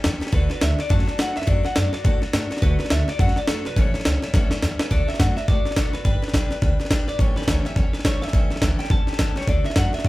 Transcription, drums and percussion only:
0.04 snare, hi-hat pedal
0.21 snare
0.27 snare
0.33 kick, snare
0.50 snare
0.61 snare, hi-hat pedal
0.79 snare
0.90 kick, snare
0.99 snare
1.08 snare
1.19 snare, hi-hat pedal
1.36 snare
1.42 snare
1.47 kick, snare
1.65 snare
1.76 snare, hi-hat pedal
1.93 snare
2.04 kick, snare
2.22 snare
2.33 snare, hi-hat pedal
2.51 snare
2.57 snare
2.62 kick, snare
2.79 snare
2.85 snare
2.90 snare, hi-hat pedal
3.08 snare
3.19 kick, snare
3.28 snare
3.36 snare
3.48 snare, hi-hat pedal
3.65 snare
3.76 kick, snare
3.94 snare
4.00 snare
4.05 snare, hi-hat pedal
4.22 snare
4.34 kick, snare
4.51 snare
4.63 snare, hi-hat pedal
4.79 snare
4.91 kick, snare
5.09 snare
5.14 snare
5.20 kick, snare, hi-hat pedal
5.37 snare
5.48 kick, snare
5.66 snare
5.71 snare
5.77 kick, snare, hi-hat pedal
5.94 snare
6.05 kick, snare
6.22 snare
6.28 snare
6.34 kick, snare, hi-hat pedal
6.51 snare
6.62 kick, snare
6.80 snare
6.85 snare
6.91 kick, snare, hi-hat pedal
7.08 snare
7.19 kick, snare
7.36 snare
7.42 snare
7.48 kick, snare, hi-hat pedal
7.65 snare
7.76 kick, snare
7.94 snare
7.99 snare
8.05 kick, snare, hi-hat pedal
8.22 snare
8.28 snare
8.33 kick, snare
8.51 snare
8.56 snare
8.62 kick, snare, hi-hat pedal
8.79 snare
8.85 snare
8.90 kick, snare
9.07 snare
9.13 snare
9.19 kick, snare, hi-hat pedal
9.36 snare
9.41 snare
9.48 kick, snare
9.65 snare
9.70 snare
9.76 kick, snare, hi-hat pedal
9.93 snare
9.99 snare
10.04 kick, snare

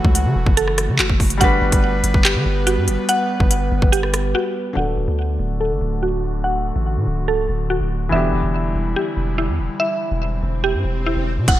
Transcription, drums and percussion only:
0.05 kick
0.15 closed hi-hat
0.46 kick
0.57 closed hi-hat
0.68 cross-stick
0.78 cross-stick, closed hi-hat
0.99 clap, closed hi-hat
1.10 kick
1.20 kick, open hi-hat
1.30 closed hi-hat
1.41 kick, closed hi-hat
1.72 kick, closed hi-hat
2.04 closed hi-hat
2.14 kick
2.25 clap, closed hi-hat
2.67 closed hi-hat
2.88 closed hi-hat
3.09 closed hi-hat
3.40 kick
3.51 closed hi-hat
3.82 kick
3.93 closed hi-hat
4.03 cross-stick
4.14 cross-stick, closed hi-hat
11.48 kick, closed hi-hat

